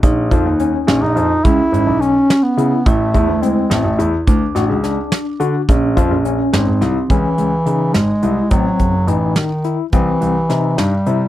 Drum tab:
HH |xxxxx|xxxxx|xxxxx|xxxxx|
SD |---o-|---o-|---o-|-ooo-|
BD |oo---|o----|oo---|o----|

HH |xxxxx|xxxxx|xxxxx|xxxxx|
SD |---oo|---o-|---o-|--oo-|
BD |oo---|o----|oo---|o----|